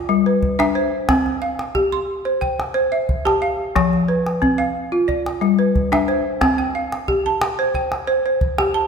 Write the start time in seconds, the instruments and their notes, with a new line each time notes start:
Already playing: balafon D5
0.09 balafon G3
0.26 balafon B4
0.42 calabash thump
0.59 balafon D4 E5, calabash click
0.75 balafon C5
1.09 balafon C4, calabash thump, calabash click
1.26 calabash click
1.42 balafon F5
1.59 calabash click
1.75 balafon G4, calabash thump, calabash click
1.92 balafon C6
2.25 balafon C5
2.41 balafon G5, calabash thump
2.60 calabash click
2.74 balafon C5
2.92 balafon E5
3.09 calabash thump
3.25 balafon G4 A5, calabash click
3.42 balafon F5
3.76 balafon F3, calabash thump, calabash click
3.93 calabash click
4.08 balafon B4
4.27 calabash click
4.42 balafon C4, calabash thump
4.58 balafon F5, calabash click
4.92 balafon F4
5.08 balafon D5, calabash thump
5.26 calabash click
5.41 balafon G3, calabash click
5.59 balafon B4
5.75 calabash thump
5.92 balafon D4 E5, calabash click
6.08 balafon C5, calabash click
6.41 balafon C4, calabash thump, calabash click
6.58 balafon G5, calabash click
6.75 balafon F5
6.92 calabash click
7.08 balafon G4, calabash thump, calabash click
7.26 balafon A5
7.42 calabash click
7.59 balafon C5
7.74 balafon G5, calabash thump
7.92 calabash click
8.07 balafon C5
8.26 balafon C5
8.41 calabash thump
8.58 balafon G4, calabash click
8.74 balafon A5